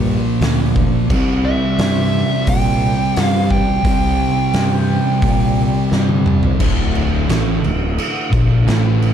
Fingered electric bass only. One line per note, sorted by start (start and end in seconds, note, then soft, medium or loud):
0.00 0.17 G2 loud
0.41 0.85 D2 medium
1.10 1.54 C2 loud
1.78 2.22 G2 loud
2.47 2.91 A#2 loud
3.17 3.61 G2 medium
3.85 4.29 C2 loud
4.54 4.98 G2 medium
5.22 5.66 A#2 loud
5.92 6.36 G2 loud
6.60 7.25 D1 loud
7.30 7.62 A1 loud
7.65 7.97 D1 medium
8.32 8.65 A#1 medium
8.67 9.14 A1 loud